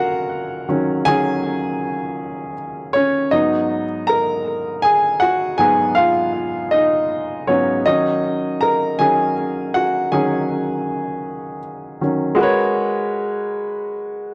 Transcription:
Already playing: D#3 F#3 C#4 F4 F#4 A#4 F5 F#5 A#5
0.69 D#3 F#3 C#4
1.05 D#3 F#3 C#4 G#4 G#5
2.93 C#4 C#5
3.31 G#2 F#3 B3 D#4 D#5
4.07 A#4 A#5
4.82 G#4 G#5
5.20 F#4 F#5
5.58 G#2 F#3 B3 G#4 G#5
5.95 F4 F5
6.71 D#4 D#5
7.47 G#2 F#3 B3 C#4 C#5
7.86 D#3 F#3 C#4 D#4 D#5
8.61 A#4 A#5
8.99 D#3 F#3 C#4 G#4 G#5
9.74 F#4 F#5
10.12 D#3 F#3 C#4 G#4 G#5
12.01 D#3 F#3 C#4
12.35 G#3 F#4 A#4
12.41 B4 C#5

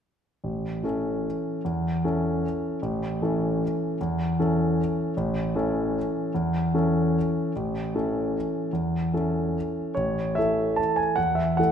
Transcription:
0.44 A1
0.83 E3 C#4 A4
1.65 E2
2.04 E3 C#4 A4
2.82 A1
3.22 E3 C#4 A4
4.01 E2
4.39 E3 C#4 A4
5.17 A1
5.55 E3 C#4 A4
6.35 E2
6.74 E3 C#4 A4
7.56 A1
7.95 E3 C#4 A4
8.73 E2
9.14 E3 C#4 A4
9.95 A1 C#5
10.35 E3 A3 A4 E5
10.76 A5
10.96 G#5
11.16 E2 F#5
11.35 E5
11.57 E3 A3 A4 F#5

